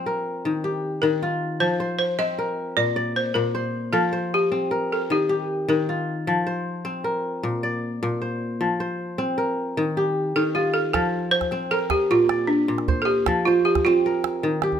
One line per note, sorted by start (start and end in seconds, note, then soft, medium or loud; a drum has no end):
0.00 0.49 F3 medium
0.00 1.68 C4 medium
0.00 0.67 C5 medium
0.06 1.34 A#4 medium
0.45 1.02 D#3 medium
0.64 2.05 G4 medium
1.02 1.66 D#3 medium
1.02 1.62 A#4 medium
1.23 2.74 F4 medium
1.60 2.82 F3 medium
1.60 1.97 C5 medium
1.80 2.99 C5 medium
1.99 2.19 C5 medium
2.19 3.99 C4 medium
2.19 2.73 D#5 medium
2.39 3.66 A#4 medium
2.77 3.34 A#2 medium
2.77 3.17 D5 medium
2.96 4.07 D5 medium
3.16 3.34 C5 medium
3.34 3.98 A#2 medium
3.34 3.95 A#4 medium
3.55 4.12 C5 medium
3.93 5.15 F3 medium
3.93 4.29 A4 medium
4.13 5.31 C5 medium
4.34 4.69 G4 medium
4.52 6.32 C4 medium
4.71 5.98 A#4 medium
4.92 5.10 A4 medium
5.10 5.67 D#3 medium
5.10 5.71 G4 medium
5.29 6.71 G4 medium
5.68 6.32 D#3 medium
5.68 6.10 A#4 medium
5.89 7.40 F4 medium
6.27 7.48 F3 medium
6.47 7.65 C5 medium
6.85 8.65 C4 medium
7.04 8.32 A#4 medium
7.43 8.01 A#2 medium
7.63 8.74 D5 medium
8.03 8.65 A#2 medium
8.22 8.80 C5 soft
8.61 9.82 F3 medium
8.80 9.99 C5 medium
9.18 10.98 C4 medium
9.38 10.65 A#4 medium
9.77 10.35 D#3 medium
9.97 11.38 G4 medium
10.36 10.98 D#3 medium
10.36 10.54 A4 medium
10.55 12.06 F4 medium
10.55 10.73 G4 medium
10.74 10.92 A4 medium
10.93 12.15 F3 medium
10.93 11.34 A4 medium
10.93 calabash thump medium
10.93 calabash click medium
11.31 11.72 C5 medium
11.41 calabash thump soft
11.41 calabash click soft
11.51 13.32 C4 medium
11.51 calabash click soft
11.71 11.91 A4 medium
11.71 12.98 A#4 medium
11.90 11.99 G4 medium
11.90 calabash thump medium
11.90 calabash click medium
12.11 12.67 A#2 medium
12.11 12.51 F4 medium
12.29 13.40 D5 medium
12.29 calabash click medium
12.47 13.01 D4 medium
12.68 13.32 A#2 medium
12.78 calabash click soft
12.88 13.47 C5 medium
12.88 calabash thump medium
13.02 13.46 G4 medium
13.02 13.08 A4 medium
13.26 14.48 F3 medium
13.26 calabash thump medium
13.26 calabash click medium
13.45 13.66 F4 medium
13.45 14.66 C5 medium
13.65 13.74 G4 medium
13.75 calabash thump medium
13.75 calabash click medium
13.85 14.80 C4 medium
13.85 14.80 F4 medium
13.85 calabash click soft
14.06 14.80 A#4 medium
14.24 calabash click medium
14.43 14.80 D#3 medium
14.62 14.80 G4 medium
14.62 calabash click medium
14.72 calabash thump soft